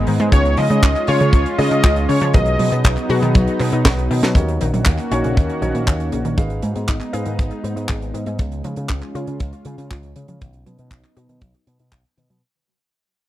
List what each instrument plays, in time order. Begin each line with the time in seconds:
Already playing: grand piano G#3 B3 D#4 A#4, analog synth pad G#3 B3 D#4
0.07 picked electric bass G#2, synth arpeggio sound D#3, open hi-hat
0.20 picked electric bass G#2, synth arpeggio sound G#3, closed hi-hat
0.32 picked electric bass C#2, synth arpeggio sound C#3, grand piano G#3 C#4 F4 G#4, analog synth pad C#4 F4, analog synth lead C#5, kick, closed hi-hat
0.45 closed hi-hat
0.57 picked electric bass C#3, synth arpeggio sound F3, analog synth lead D#5, open hi-hat
0.70 picked electric bass C#3, synth arpeggio sound G#3, closed hi-hat
0.83 picked electric bass C#2, synth arpeggio sound C#4, kick, clap, closed hi-hat
0.96 clap, closed hi-hat
1.07 picked electric bass C#3, grand piano G#3 C#4 F4 G#4, synth arpeggio sound F4, analog synth lead C#5, open hi-hat
1.20 synth arpeggio sound C#3, picked electric bass C#3, closed hi-hat
1.33 picked electric bass C#2, synth arpeggio sound F3, analog synth lead C#5, kick, closed hi-hat
1.46 closed hi-hat
1.58 picked electric bass C#3, grand piano G#3 C#4 F4 G#4, synth arpeggio sound G#3, analog synth lead D#5, open hi-hat
1.71 picked electric bass C#3, synth arpeggio sound C#4, closed hi-hat
1.83 picked electric bass C#2, synth arpeggio sound F4, kick, clap, closed hi-hat
1.96 closed hi-hat
2.09 picked electric bass C#3, synth arpeggio sound C#3, analog synth lead C#5, open hi-hat
2.21 picked electric bass C#3, synth arpeggio sound F3, closed hi-hat
2.34 picked electric bass B1, synth arpeggio sound D#3, grand piano F#3 B3 D#4 G#4, analog synth pad F#3 B3 D#4, analog synth lead D#5, kick, closed hi-hat
2.46 closed hi-hat
2.59 picked electric bass B2, synth arpeggio sound F#3, open hi-hat
2.72 picked electric bass B2, synth arpeggio sound B3, closed hi-hat
2.84 picked electric bass B1, synth arpeggio sound D#4, kick, clap, closed hi-hat
2.97 clap, closed hi-hat
3.09 picked electric bass B2, grand piano F#3 B3 D#4 G#4, synth arpeggio sound F#4, open hi-hat
3.22 picked electric bass B2, synth arpeggio sound D#3, closed hi-hat
3.35 picked electric bass B1, synth arpeggio sound F#3, kick, closed hi-hat
3.47 closed hi-hat
3.60 picked electric bass B2, synth arpeggio sound B3, clap, open hi-hat
3.72 picked electric bass B2, synth arpeggio sound D#4, closed hi-hat
3.85 picked electric bass B1, synth arpeggio sound F#4, kick, snare, clap, closed hi-hat
3.98 closed hi-hat
4.10 picked electric bass B2, synth arpeggio sound D#3, open hi-hat
4.23 picked electric bass B2, synth arpeggio sound F#3, snare, closed hi-hat
4.35 picked electric bass D#2, synth arpeggio sound C#3, analog synth pad D#3 A#3 C#4 F#4, grand piano D#4 F#4 A#4 C#5, kick, closed hi-hat
4.48 closed hi-hat
4.61 picked electric bass A#1, synth arpeggio sound D#3, closed hi-hat
4.74 picked electric bass A#1, synth arpeggio sound F#3, closed hi-hat
4.85 picked electric bass D#2, synth arpeggio sound A#3, kick, clap, closed hi-hat
4.98 clap, closed hi-hat
5.11 picked electric bass A#1, synth arpeggio sound C#4, grand piano D#4 F#4 A#4 C#5, closed hi-hat
5.24 picked electric bass A#1, synth arpeggio sound C#3, closed hi-hat
5.37 picked electric bass D#2, synth arpeggio sound D#3, kick, closed hi-hat
5.49 closed hi-hat
5.62 picked electric bass A#1, synth arpeggio sound F#3, grand piano D#4 F#4 A#4 C#5, closed hi-hat
5.74 picked electric bass A#1, synth arpeggio sound A#3, closed hi-hat
5.87 picked electric bass D#2, synth arpeggio sound C#4, kick, clap, closed hi-hat
6.00 closed hi-hat
6.12 picked electric bass A#1, synth arpeggio sound C#3, closed hi-hat
6.25 picked electric bass A#1, synth arpeggio sound D#3, closed hi-hat
6.37 picked electric bass G#1, synth arpeggio sound D#3, analog synth pad G#3 B3 D#4, grand piano D#4 G#4 B4 F5, kick, closed hi-hat
6.50 closed hi-hat
6.62 picked electric bass G#2, synth arpeggio sound G#3, closed hi-hat
6.75 picked electric bass G#2, synth arpeggio sound B3, closed hi-hat
6.88 picked electric bass G#1, synth arpeggio sound D#4, kick, clap, closed hi-hat
7.00 clap, closed hi-hat
7.13 picked electric bass G#2, grand piano D#4 G#4 B4 F5, synth arpeggio sound G#4, closed hi-hat
7.25 picked electric bass G#2, synth arpeggio sound D#3, closed hi-hat
7.39 picked electric bass G#1, synth arpeggio sound G#3, kick, closed hi-hat
7.51 closed hi-hat
7.64 picked electric bass G#2, synth arpeggio sound B3, closed hi-hat
7.76 picked electric bass G#2, synth arpeggio sound D#4, closed hi-hat
7.89 picked electric bass G#1, synth arpeggio sound G#4, kick, clap, closed hi-hat
8.02 closed hi-hat
8.14 picked electric bass G#2, synth arpeggio sound D#3, closed hi-hat
8.26 picked electric bass G#2, synth arpeggio sound G#3, closed hi-hat
8.39 picked electric bass C#2, synth arpeggio sound C#3, analog synth pad C#4 F4, kick, closed hi-hat
8.52 closed hi-hat
8.64 picked electric bass C#3, synth arpeggio sound F3, closed hi-hat
8.76 picked electric bass C#3, synth arpeggio sound G#3, closed hi-hat
8.89 picked electric bass C#2, synth arpeggio sound C#4, kick, clap, closed hi-hat
9.01 clap, closed hi-hat
9.15 picked electric bass C#3, synth arpeggio sound F4, closed hi-hat
9.27 picked electric bass C#3, synth arpeggio sound C#3, closed hi-hat
9.40 picked electric bass C#2, synth arpeggio sound F3, kick, closed hi-hat
9.53 closed hi-hat
9.65 picked electric bass C#3, synth arpeggio sound G#3, closed hi-hat
9.78 picked electric bass C#3, synth arpeggio sound C#4, closed hi-hat
9.91 picked electric bass C#2, synth arpeggio sound F4, kick, clap, closed hi-hat
10.03 closed hi-hat
10.16 picked electric bass C#3, synth arpeggio sound C#3, closed hi-hat
10.28 picked electric bass C#3, synth arpeggio sound F3, closed hi-hat
10.41 picked electric bass B1, synth arpeggio sound D#3, analog synth pad F#3 B3 D#4, kick, closed hi-hat
10.53 closed hi-hat
10.66 picked electric bass B2, synth arpeggio sound F#3, closed hi-hat
10.79 picked electric bass B2, synth arpeggio sound B3, closed hi-hat
10.91 synth arpeggio sound D#4, kick, clap, closed hi-hat
11.04 clap, closed hi-hat
11.17 picked electric bass B2, synth arpeggio sound F#4, closed hi-hat
11.29 picked electric bass B2, synth arpeggio sound D#3, closed hi-hat
11.41 picked electric bass B1, synth arpeggio sound F#3, kick, closed hi-hat
11.54 closed hi-hat
11.67 picked electric bass B2, synth arpeggio sound B3, closed hi-hat
11.79 picked electric bass B2, synth arpeggio sound D#4, closed hi-hat
11.92 picked electric bass B1, synth arpeggio sound F#4, kick, clap, closed hi-hat
12.05 closed hi-hat
12.17 picked electric bass B2, synth arpeggio sound D#3, closed hi-hat
12.30 picked electric bass B2, synth arpeggio sound F#3, closed hi-hat